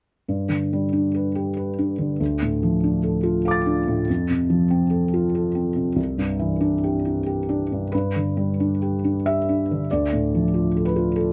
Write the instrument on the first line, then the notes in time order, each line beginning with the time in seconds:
felt piano
0.28 G2
0.49 D3
0.73 G3
0.93 D4
1.14 B4
1.35 G4
1.57 B4
1.79 D4
1.98 D3
2.20 D2
2.42 A2
2.63 F3
2.83 D4
3.03 A4
3.23 F4
3.45 A4 F5 D6
3.51 A6
3.66 D4
3.88 A2
4.09 F2
4.30 C3
4.50 F3
4.70 C4
4.90 A4
5.13 F4
5.35 A4
5.55 C4
5.76 C3
5.96 C2
6.18 G2
6.39 E3
6.60 D4
6.84 G4
7.05 E4
7.26 G4
7.49 D4
7.72 G2
7.92 G2 B4
8.16 D3
8.37 G3
8.60 D4
8.82 G4
9.04 D4
9.26 G4 E5
9.49 D4
9.71 D3
9.91 D2 D5
10.13 A2
10.34 F3
10.54 F4
10.77 A4
10.85 B4
10.96 F4
11.16 A4